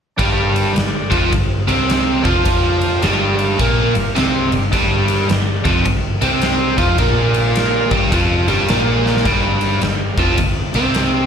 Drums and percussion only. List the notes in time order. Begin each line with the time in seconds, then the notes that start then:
0.19 kick, ride
0.56 ride
0.76 snare, ride
1.12 kick, ride
1.33 kick, ride
1.69 ride
1.90 snare, ride
2.25 kick, ride
2.45 kick, ride
2.81 ride
3.02 snare, ride
3.39 ride
3.59 kick, ride
3.95 ride
4.16 snare, ride
4.52 ride
4.73 kick, ride
5.08 ride
5.29 snare, ride
5.65 kick, ride
5.85 kick, ride
6.22 ride
6.42 snare, ride
6.78 kick, ride
6.98 kick, ride
7.34 ride
7.56 snare, ride
7.91 kick, ride
8.12 kick, ride
8.48 ride
8.68 snare, ride
9.06 snare
9.17 snare
9.25 kick, ride
9.61 ride
9.81 snare, ride
10.18 kick, ride
10.38 kick, ride
10.74 ride
10.94 snare, ride